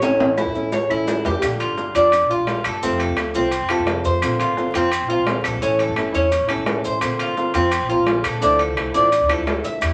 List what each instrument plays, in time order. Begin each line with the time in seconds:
0.02 upright bass A1, nylon-string guitar E3 A3 C#4 E4, cuban tres C#4, high timbale, maracas
0.19 upright bass A1, high timbale
0.37 nylon-string guitar E3 A3 C#4 E4, cuban tres E4, low timbale, claves, maracas
0.46 upright bass A2
0.54 upright bass A1, nylon-string guitar A3 C#4 E4, maracas
0.72 cuban tres C#5, muted nylon-string guitar stroke, low timbale, maracas
0.89 upright bass A1, nylon-string guitar A3 C#4 E4, cuban tres E4, claves
1.07 nylon-string guitar E3 A3 C#4 E4, low timbale, maracas
1.25 upright bass F2, cuban tres G4, low timbale, maracas
1.42 upright bass A#1, nylon-string guitar D3 G3 D4 F4, high timbale, claves, maracas
1.60 cuban tres F4, high timbale, maracas
1.68 upright bass G1
1.77 nylon-string guitar D3 G3 D4 F4, low timbale, maracas
1.95 upright bass F2, nylon-string guitar G3 D4 F4, cuban tres D4, high timbale, maracas
2.12 muted nylon-string guitar stroke, high timbale, claves, maracas
2.21 upright bass A#1
2.29 nylon-string guitar G3 D4 F4, cuban tres F4, maracas
2.39 upright bass A#1
2.47 nylon-string guitar D3 G3 D4 F4, high timbale, low timbale, maracas
2.64 upright bass G1, cuban tres A4, high timbale, claves, maracas
2.82 upright bass F1, nylon-string guitar C3 F3 A3 C4 F4, cuban tres C4, maracas
3.00 cuban tres A4, high timbale, maracas
3.09 upright bass D2
3.17 nylon-string guitar F3 A3 C4 F4, high timbale, low timbale, claves, maracas
3.34 upright bass C2, nylon-string guitar F3 A3 C4 F4, cuban tres C4, maracas
3.51 muted nylon-string guitar stroke, high timbale, maracas
3.61 upright bass F1
3.69 nylon-string guitar F3 A3 C4 F4, cuban tres A4, high timbale, claves, maracas
3.79 upright bass F1
3.87 nylon-string guitar F3 A3 C4 F4, high timbale, low timbale, maracas
4.04 upright bass F2, cuban tres C5, maracas
4.21 upright bass A#1, nylon-string guitar D3 A#3 C4 F4, high timbale, claves, maracas
4.40 cuban tres F4, high timbale, maracas
4.48 upright bass G1
4.56 nylon-string guitar D3 A#3 C4 F4, low timbale, maracas
4.74 upright bass F2, nylon-string guitar A#3 C4 F4, cuban tres C4, high timbale, maracas
4.92 muted nylon-string guitar stroke, high timbale, claves, maracas
5.00 upright bass A#1
5.08 nylon-string guitar A#3 C4 F4, cuban tres F4, maracas
5.18 upright bass A#1
5.26 nylon-string guitar D3 A#3 C4, high timbale, low timbale, maracas
5.44 upright bass A#1, cuban tres A4, high timbale, claves, maracas
5.61 upright bass A1, nylon-string guitar E3 A3 C#4 E4, cuban tres C#4, maracas
5.79 cuban tres A4, high timbale, maracas
5.88 upright bass G1
5.96 nylon-string guitar E3 A3 C#4 E4, high timbale, low timbale, claves, maracas
6.12 upright bass E2, nylon-string guitar A3 C#4 E4, cuban tres C#4, maracas
6.30 muted nylon-string guitar stroke, high timbale, maracas
6.40 upright bass A1
6.47 nylon-string guitar A3 C#4 E4, cuban tres A4, high timbale, claves, maracas
6.58 upright bass A1
6.65 nylon-string guitar E3 A3 C#4 E4, high timbale, low timbale, maracas
6.84 upright bass A1, cuban tres C5, maracas
7.00 upright bass A#1, nylon-string guitar D3 A#3 C4 F4, high timbale, claves, maracas
7.19 cuban tres F4, high timbale, maracas
7.28 upright bass G1
7.36 nylon-string guitar D3 A#3 C4 F4, low timbale, maracas
7.54 upright bass F2, nylon-string guitar A#3 C4 F4, cuban tres C4, high timbale, maracas
7.72 muted nylon-string guitar stroke, high timbale, claves, maracas
7.80 upright bass A#1
7.89 nylon-string guitar A#3 C4 F4, cuban tres F4, maracas
7.97 upright bass A#1
8.06 nylon-string guitar D3 A#3 C4 F4, high timbale, low timbale, maracas
8.24 upright bass A#2, cuban tres A4, high timbale, claves, maracas
8.40 upright bass D2, nylon-string guitar D3 F3 A3 D4 E4, cuban tres D4, maracas
8.59 cuban tres A4, high timbale, maracas
8.68 upright bass C2
8.76 nylon-string guitar F3 A3 D4 E4, high timbale, low timbale, claves, maracas
8.94 upright bass A1, nylon-string guitar F3 A3 D4 E4, cuban tres D4, maracas
9.11 muted nylon-string guitar stroke, high timbale, maracas
9.20 upright bass D2
9.28 nylon-string guitar F3 A3 D4 E4, cuban tres A4, high timbale, claves, maracas
9.38 upright bass D2
9.46 nylon-string guitar F3 A3 D4 E4, high timbale, low timbale, maracas
9.64 upright bass D3, cuban tres E5, maracas
9.81 upright bass E2, nylon-string guitar E3 G3 E4, high timbale, claves, maracas